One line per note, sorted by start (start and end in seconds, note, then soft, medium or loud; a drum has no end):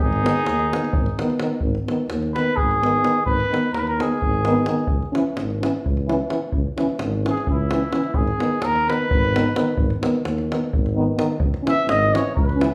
0.00 0.25 G#1 medium
0.00 1.42 D#4 medium
0.00 1.42 G#4 loud
0.13 davul high soft
0.22 0.33 D#3 medium
0.22 0.31 B3 medium
0.22 davul high medium
0.36 davul high soft
0.47 0.73 D#2 medium
0.47 davul high medium
0.60 davul high soft
0.72 0.80 D#3 soft
0.72 0.81 B3 soft
0.72 davul high medium
0.84 davul high soft
0.93 1.09 G#1 medium
0.93 davul low loud
1.06 davul high soft
1.19 1.27 D#3 medium
1.19 1.29 B3 medium
1.19 davul high medium
1.30 davul high soft
1.40 1.49 D#3 medium
1.40 1.51 B3 medium
1.40 davul high medium
1.61 1.76 G#1 medium
1.61 davul low medium
1.75 davul high soft
1.88 1.97 D#3 soft
1.88 1.96 B3 medium
1.88 davul high medium
2.09 2.36 D#2 medium
2.09 davul high medium
2.22 davul high soft
2.34 2.46 D#3 soft
2.34 2.45 B3 medium
2.34 2.58 B4 loud
2.34 davul high medium
2.56 2.95 G#1 medium
2.56 3.24 G#4 medium
2.56 davul low medium
2.71 davul high soft
2.82 2.92 D#3 medium
2.82 2.91 B3 medium
2.82 davul high medium
3.02 3.12 D#3 medium
3.02 3.11 B3 medium
3.02 davul high medium
3.26 3.40 G#1 medium
3.26 3.75 B4 medium
3.26 davul low medium
3.40 davul high soft
3.50 3.59 D#3 medium
3.50 3.61 B3 medium
3.50 davul high medium
3.73 4.00 D#2 medium
3.73 3.80 A#4 loud
3.73 davul high medium
3.78 3.89 B4 medium
3.87 4.03 A#4 medium
3.87 davul high soft
4.00 4.08 D#3 medium
4.00 4.08 B3 medium
4.00 5.16 G#4 medium
4.00 davul high medium
4.22 4.59 G#1 medium
4.22 davul low medium
4.34 davul high soft
4.45 4.54 D#3 medium
4.45 4.55 B3 medium
4.45 davul high medium
4.66 4.75 D#3 medium
4.66 4.76 B3 medium
4.66 davul high medium
4.87 5.03 C#2 medium
4.87 davul low medium
5.03 davul high soft
5.12 5.23 E3 medium
5.12 5.22 C#4 medium
5.12 davul high medium
5.37 5.63 G#1 medium
5.37 davul high medium
5.50 davul high soft
5.61 5.71 E3 medium
5.61 5.70 C#4 medium
5.61 davul high medium
5.86 6.22 C#2 medium
5.86 davul low medium
5.97 davul high soft
6.08 6.17 E3 medium
6.08 6.18 C#4 medium
6.08 davul high medium
6.28 6.38 E3 medium
6.28 6.37 C#4 soft
6.28 davul high medium
6.52 6.67 C#2 medium
6.52 davul low medium
6.78 6.87 E3 medium
6.78 6.86 C#4 medium
6.78 davul high medium
6.89 davul high soft
6.99 7.26 G#1 medium
6.99 davul high medium
7.24 7.33 E3 medium
7.24 7.33 C#4 medium
7.24 davul high medium
7.30 7.48 G#4 medium
7.38 davul high soft
7.47 7.85 C#2 medium
7.47 8.17 E4 medium
7.47 davul low medium
7.70 7.79 E3 medium
7.70 7.79 C#4 medium
7.70 davul high medium
7.91 8.01 E3 medium
7.91 8.00 C#4 medium
7.91 davul high medium
8.03 davul high soft
8.14 8.29 G#1 medium
8.14 8.66 G#4 medium
8.14 davul low medium
8.28 davul high soft
8.39 8.50 D#3 soft
8.39 8.48 B3 medium
8.39 davul high medium
8.62 8.89 D#2 medium
8.62 8.90 A#4 loud
8.62 davul high medium
8.76 davul high soft
8.87 8.98 D#3 medium
8.87 8.96 B3 medium
8.87 10.03 B4 loud
8.87 davul high medium
9.10 9.47 G#1 medium
9.10 davul low loud
9.25 davul high soft
9.34 9.43 D#3 medium
9.34 9.43 B3 medium
9.34 davul high medium
9.54 9.65 D#3 medium
9.54 9.63 B3 medium
9.54 davul high medium
9.77 9.91 G#1 medium
9.77 davul low medium
9.90 davul high soft
10.02 10.11 D#3 medium
10.02 10.11 B3 medium
10.02 davul high medium
10.25 10.52 D#2 medium
10.25 davul high medium
10.38 davul high soft
10.51 10.59 D#3 medium
10.51 10.59 B3 medium
10.51 davul high medium
10.73 11.10 G#1 medium
10.73 davul low medium
10.86 davul high soft
10.95 11.05 D#3 medium
10.95 11.04 B3 medium
11.14 11.26 D#3 medium
11.14 11.23 B3 medium
11.19 davul high medium
11.39 11.53 C#2 medium
11.39 davul low medium
11.54 davul high soft
11.63 11.74 E3 medium
11.63 11.72 C#4 medium
11.67 11.87 E5 loud
11.67 davul high medium
11.87 12.13 G#1 loud
11.87 12.16 D#5 loud
11.87 davul high medium
12.02 davul high soft
12.12 12.22 E3 medium
12.12 12.21 C#4 medium
12.12 12.35 C#5 medium
12.12 davul high medium
12.35 12.72 C#2 medium
12.35 12.74 B4 medium
12.35 davul low loud
12.49 davul high soft
12.56 12.65 C#4 medium
12.60 12.69 E3 medium
12.60 davul high medium